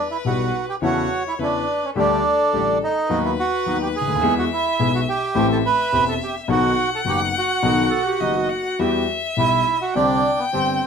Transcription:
Already playing: B4
0.11 E4
0.25 B1 B2 E3 G3 B3 E4 F#4 G4
0.69 G4
0.82 E2 C#3 E3 A3 C#4 E4 F#4 C#5
1.28 E4
1.39 E2 C#3 E3 A3 C#4 E4 B4
1.43 D4
1.85 C#4
1.95 D2 D3 G3 A3 D4 G4 A4
1.99 D4
2.53 A1 A2 D3 G3 A3 D4 G4
2.84 D#4
3.08 D#2 D#3 F#3 B3 D#4 F#4 B4
3.25 E4
3.39 F#4
3.66 D#2 D#3 F#3 B3 D#4 F#4
3.82 G4
3.96 G#4
4.01 C#2
4.08 D2
4.15 D#2
4.21 E2 E3 G#3 B3 E4 G#4 E5
4.39 F#4
4.53 E4
4.79 B1 B2 E3 G#3 B3 E4 G#4
4.95 F#4
5.09 G4
5.35 A1 A2 E3 A3 C4 G4 E5
5.52 A4
5.66 B4
5.92 E1 E2 E3 A3 C4 G4
6.09 A4
6.23 G4
6.48 B1 B2 D#3 F#3 B3 D#4 F#4 F#5
6.95 A4
7.05 F#1 F#2 D#3 F#3 B3 D#4 F#4 G4
7.38 F#4
7.62 B1 B2 D#3 F#3 B3 D#4 F#4
7.90 A4
8.05 G4
8.20 F#1 F#2 D#3 F#3 B3 D#4 F#4 D#5
8.36 F#4
8.49 F#5
8.79 E2 E3 G3 B3 E4 G4 E5
9.37 B1 B2 E3 G3 B3 E4 G4
9.82 F#4
9.94 C2 C3 D3 G3 C4 D4 G4 G5
10.39 B3
10.52 G1 G2 D3 G3 C4 D4 G4

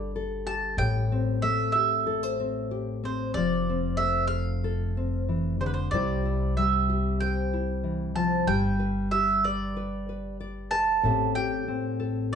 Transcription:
Already playing: G1 G3 D4 G4 A4 D5
0.16 A4
0.46 G4 A5
0.77 A1 A2 G5
1.12 C4
1.42 A3 E5
1.72 G4 E5
2.07 A4
2.23 C5
2.40 C4
2.71 G4
3.04 C4 C5
3.34 F1 F3 D5
3.69 C4
3.97 A3 E5
4.27 F5
4.64 A4
4.97 C4
5.28 E3
5.60 D3 C5
5.66 B4
5.74 C5
5.91 C2 C3 G3 E4 G4 C5 D5
6.26 E4
6.57 G3 E5
6.89 G4
7.20 C5 G5
7.53 E4
7.83 E3
8.15 F3 A5
8.47 G1 G3 G5
8.79 B4
9.11 G4 E5
9.44 B4 D5
9.77 B4
10.09 B4
10.40 D5
10.71 B4 A5
11.03 A1 A2 C4 G4 A4 E5
11.35 G4 G5
11.68 C4
12.00 A4

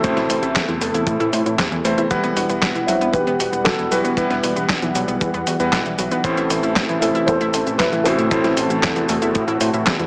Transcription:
Already playing: C3 E3 A3 E4 F#4 A4
0.04 A1 A2 E3 A3 C4 E4 C5, kick, closed hi-hat, cabasa
0.17 A1 E4, snare, closed hi-hat, cabasa
0.30 A1 C5, open hi-hat, cabasa
0.42 A1 E4, closed hi-hat, cabasa
0.55 E2 C4, kick, snare, clap, closed hi-hat, cabasa
0.68 E2 E3, closed hi-hat, cabasa
0.81 E2 A3, open hi-hat, cabasa
0.94 E2 E4, closed hi-hat, cabasa
1.07 A2 E3, kick, closed hi-hat, cabasa
1.20 A2 E4, closed hi-hat, cabasa
1.33 A2 C5, open hi-hat, cabasa
1.46 A2 E4, closed hi-hat, cabasa
1.59 E2 C4, kick, snare, clap, closed hi-hat, cabasa
1.72 E2 E3, closed hi-hat, cabasa
1.85 E2 A3 C4 E4 C5, open hi-hat, cabasa
1.98 E2 E4, closed hi-hat, cabasa
2.11 E1 E3 G3 B3 E4 B4 F#5, kick, closed hi-hat, cabasa
2.23 E1 B3, closed hi-hat, cabasa
2.36 E1 F#4, open hi-hat, cabasa
2.49 E1 B3, closed hi-hat, cabasa
2.62 E1 G3, kick, snare, clap, closed hi-hat, cabasa
2.75 E1 E3, closed hi-hat, cabasa
2.87 E1 F#3 C4 E4, open hi-hat, cabasa
3.01 E1 B3, closed hi-hat, cabasa
3.13 B1 E3 G4 B4, kick, closed hi-hat, cabasa
3.27 E1 B3, closed hi-hat, cabasa
3.40 E1 F#4, open hi-hat, cabasa
3.53 E1 B3, closed hi-hat, cabasa
3.65 E1 G3 F#4 A4, kick, snare, clap, closed hi-hat, cabasa
3.79 E1 E3, closed hi-hat, cabasa
3.90 E1 F#3 G3 E4 F#4 G4 B4, open hi-hat, cabasa
4.04 E1 B3, closed hi-hat, cabasa
4.17 E1 E3 G3 E4 B4 F#5, kick, closed hi-hat, cabasa
4.30 E1 B3, snare, closed hi-hat, cabasa
4.43 E1 F#4, open hi-hat, cabasa
4.56 E1 B3, closed hi-hat, cabasa
4.69 B1 G3, kick, snare, clap, closed hi-hat, cabasa
4.82 B1 E3, closed hi-hat, cabasa
4.95 B1 F#3, open hi-hat, cabasa
5.08 B1 B3, closed hi-hat, cabasa
5.21 E2 E3, kick, closed hi-hat, cabasa
5.34 E2 B3, closed hi-hat, cabasa
5.47 E2 F#4, open hi-hat, cabasa
5.60 E2 G3 B3 E4 B4 F#5, closed hi-hat, cabasa
5.73 B1 G3, kick, snare, clap, closed hi-hat, cabasa
5.86 B1 E3, closed hi-hat, cabasa
5.98 B1 F#3, open hi-hat, cabasa
6.11 B1 B3, closed hi-hat, cabasa
6.24 A1 A2 C3 E3 A3 C4 E4 A4 C5, kick, closed hi-hat, cabasa
6.37 A1 E4, closed hi-hat, cabasa
6.50 A1 C5, open hi-hat, cabasa
6.63 A1 E4, closed hi-hat, cabasa
6.76 A1 C4, kick, snare, clap, closed hi-hat, cabasa
6.89 A1 E3, closed hi-hat, cabasa
7.01 A1 A3 C4 E4, open hi-hat, cabasa
7.15 A1 E4, closed hi-hat, cabasa
7.26 E2 E3 A4 C5, kick, closed hi-hat, cabasa
7.41 A1 E4, closed hi-hat, cabasa
7.54 A1 C5, open hi-hat, cabasa
7.67 A1 E4, closed hi-hat, cabasa
7.78 A1 C4 E4 B4, kick, snare, clap, closed hi-hat, cabasa
7.92 A1 E3, closed hi-hat, cabasa
8.04 A1 A2 A3 C4 E4 F#4 A4 C5, open hi-hat, cabasa
8.18 A1 E4, closed hi-hat, cabasa
8.31 A1 A2 E3 A3 C4 E4 F#4 C5, kick, closed hi-hat, cabasa
8.44 A1 E4, snare, closed hi-hat, cabasa
8.57 A1 C5, open hi-hat, cabasa
8.70 A1 E4, closed hi-hat, cabasa
8.83 E2 C4, kick, snare, clap, closed hi-hat, cabasa
8.96 E2 E3, closed hi-hat, cabasa
9.09 E2 A3, open hi-hat, cabasa
9.22 E2 E4, closed hi-hat, cabasa
9.35 A2 E3, kick, closed hi-hat, cabasa
9.48 A2 E4, closed hi-hat, cabasa
9.61 A2 C5, open hi-hat, cabasa
9.73 A2 E4, closed hi-hat, cabasa
9.86 E2 C4, kick, snare, clap, closed hi-hat, cabasa
9.99 E2 E3, closed hi-hat, cabasa

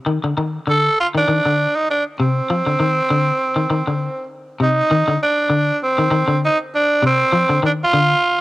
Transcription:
0.06 D#3
0.24 D3
0.37 D#3
0.67 D3 A4
1.00 F4
1.14 D#3 D4
1.28 D#3
1.45 D3
1.76 D#4
1.91 D4
2.19 C3 C4
2.50 F3
2.67 D3
2.80 D#3
3.11 D3
3.56 D#3
3.70 D#3
3.88 D3
4.60 C3 D#4
4.91 D#3
5.08 D3
5.23 D4
5.50 D3
5.83 C4
5.98 D#3
6.11 D#3
6.28 D3
6.45 D#4
6.75 D4
7.03 C3 C4
7.33 F3
7.49 D3
7.63 D#3 D4
7.84 F4
7.93 D3

